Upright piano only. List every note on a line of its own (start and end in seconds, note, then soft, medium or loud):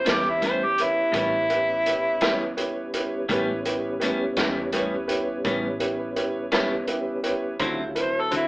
0.06 0.34 E4 soft
0.06 0.34 G4 soft
0.06 0.34 B4 soft
0.06 0.34 C#5 soft
0.42 0.69 E4 soft
0.42 0.69 G4 soft
0.42 0.70 B4 soft
0.42 0.69 E5 medium
0.80 1.06 E4 soft
0.80 1.06 G4 soft
0.80 1.06 B4 soft
0.80 1.06 C#5 soft
1.15 1.42 E4 soft
1.15 1.42 G4 soft
1.15 1.41 B4 soft
1.15 1.42 C#5 soft
1.50 1.77 E4 soft
1.50 1.77 G4 soft
1.50 1.77 B4 soft
1.50 1.77 E5 soft
1.87 2.13 E4 soft
1.87 2.14 G4 soft
1.87 2.13 B4 soft
1.87 2.13 C#5 soft
2.22 2.49 E4 medium
2.22 2.49 G4 soft
2.22 2.49 B4 medium
2.22 2.49 C#5 medium
2.57 2.84 E4 medium
2.57 2.84 G4 soft
2.57 2.84 B4 soft
2.57 2.84 C#5 medium
2.94 3.21 E4 medium
2.94 3.21 G4 medium
2.94 3.21 B4 soft
2.94 3.21 C#5 medium
3.30 3.57 E4 medium
3.30 3.57 G4 medium
3.30 3.57 B4 medium
3.30 3.57 C#5 medium
3.66 3.93 E4 medium
3.66 3.93 G4 soft
3.66 3.93 B4 soft
3.66 3.93 C#5 medium
4.00 4.28 E4 medium
4.00 4.28 G4 medium
4.00 4.28 B4 soft
4.00 4.28 C#5 medium
4.36 4.64 E4 medium
4.36 4.64 G4 medium
4.36 4.64 B4 medium
4.36 4.64 C#5 medium
4.73 5.00 E4 medium
4.73 5.00 G4 medium
4.73 5.00 B4 medium
4.73 5.00 C#5 medium
5.07 5.35 E4 medium
5.07 5.36 G4 medium
5.07 5.35 B4 medium
5.07 5.35 C#5 medium
5.44 5.72 E4 medium
5.44 5.72 G4 soft
5.44 5.72 B4 medium
5.44 5.72 C#5 medium
5.80 6.07 E4 medium
5.80 6.07 G4 soft
5.80 6.07 B4 medium
5.80 6.07 C#5 medium
6.16 6.43 E4 medium
6.16 6.43 G4 medium
6.16 6.43 B4 medium
6.16 6.44 C#5 medium
6.52 6.80 E4 medium
6.52 6.79 G4 medium
6.52 6.79 B4 medium
6.52 6.79 C#5 medium
6.88 7.16 E4 medium
6.88 7.16 G4 soft
6.88 7.15 B4 medium
6.88 7.15 E5 medium
7.23 7.51 E4 medium
7.23 7.51 G4 medium
7.23 7.51 B4 medium
7.23 7.51 C#5 medium
7.59 7.87 E4 medium
7.59 7.87 F#4 medium
7.59 7.87 A4 medium
7.59 7.87 C5 medium
7.95 8.22 E4 soft
7.95 8.23 F#4 soft
7.95 8.22 A4 soft
7.95 8.23 B4 medium
8.31 8.48 E4 soft
8.31 8.48 F#4 soft
8.31 8.48 A4 soft
8.31 8.48 C5 medium